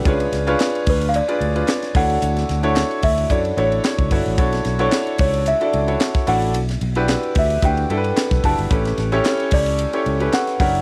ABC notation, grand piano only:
X:1
M:4/4
L:1/16
Q:"Swing 16ths" 1/4=111
K:Amix
V:1 name="Grand piano"
[D^E^GBc]2 z [DEGBc]4- [DEGBc] z [DEGBd]2 [DEGBd]2 z [D=EFAc]2- | [DEFAc]2 z [DEFAc]4 z [DEFAc]2 [DEFAc]3 z [DEFAc]2 | [DEFAc]2 z [DEFAc]4- [DEFAc] z [DEFAd]2 [DEFAc]2 z [DEFAd]2 | z3 [DEFGB]4 z [DEFGB]2 [DEGAB]3 z [DEFGB]2 |
[CEGAB]2 z [CEGAc]4- [CEGAc] z [CEGAc]2 [CEGAB]2 z [DEG^Ac]2 |]